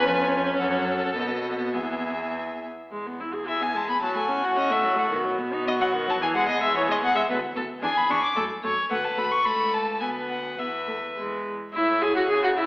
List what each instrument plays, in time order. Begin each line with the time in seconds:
Already playing: violin B4 G#5
0.04 cello F2, viola C#4
0.60 cello F#2, violin A4 F#5
1.16 cello B2, viola B3, violin D#5
1.75 cello E2, violin G#4 E5
2.91 cello E2, viola G#3
3.07 viola B3
3.20 viola E4
3.34 viola G#4
3.47 viola E4, violin G#4 E5
3.61 viola B3, violin G#5
3.75 viola G#3, violin A5
3.89 viola B3, violin B5
4.02 cello A2, viola F#3, violin F#4 A5
4.16 viola A3, violin G#5
4.29 viola C#4
4.43 viola F#4, violin F#5
4.57 viola C#4, violin D#5
4.70 viola A3, violin E5
4.83 viola F#3
4.96 viola A3, violin F#5
5.11 cello B2, viola D#3
5.24 viola F#3
5.38 viola B3
5.53 viola D#4
5.67 viola B3, violin F#4 D#5
5.80 viola F#3, violin F#5
5.94 viola D#3
6.08 viola F#3, violin A5
6.20 cello E2, viola E3, violin G#4 G#5
6.35 viola G#3, violin F#5
6.48 viola B3, violin D#5
6.61 viola G#3, violin E5
6.75 viola E3, violin G#4 C#5
6.89 viola G#3, violin D#5
7.01 viola B3, violin F#5
7.15 viola G#3, violin E5
7.29 cello D2, viola B3, violin B4
7.56 cello D2, viola B3, violin A4
7.82 cello E2, viola D4, violin G#4 G#5
7.98 violin B5
8.10 cello E2, viola D4, violin C#6
8.24 violin D6
8.36 cello F#2, viola A3, violin A4
8.63 cello F#2, viola A3, violin C#5
8.90 cello D2, viola A3, violin B4 F#5
9.04 violin A5
9.17 cello D2, viola A3, violin B5
9.31 violin C#6
9.45 cello C#2, viola A3, violin A4 B5
9.74 violin A5
10.00 cello D2, viola B3, violin B4 G#5
10.29 violin F#5
10.58 cello E2, viola B3, violin B4 E5
10.88 viola A3
11.17 cello E2, viola G#3
11.73 cello A2, viola E4, violin C#5 E5
12.02 viola G#4, violin G#5
12.16 viola F#4, violin F#5
12.29 cello C#3, viola G#4, violin G#5
12.44 viola F#4, violin F#5
12.57 viola E4, violin E5